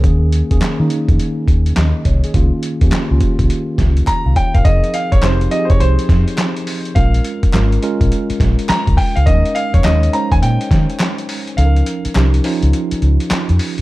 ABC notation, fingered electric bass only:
X:1
M:4/4
L:1/16
Q:"Swing 16ths" 1/4=104
K:Fm
V:1 name="Fingered electric bass" clef=bass
E,,3 E,, z E, z F,, z2 E,,2 E,, z C,, z | D,, z2 E,, z D,, z C,, z2 D,,2 z C,, z G,,, | F,,, z2 A,,, F,,,2 z F,,, C,, z F,, z4 z | B,,,2 z2 A,,,2 z B,,, z2 B,,, z2 D,, z D,, |
E,, z2 F,, E,,2 z E,, B,, z E, z4 z | D,,2 z2 C,,2 z D,, z2 D,, z2 F,, z2 |]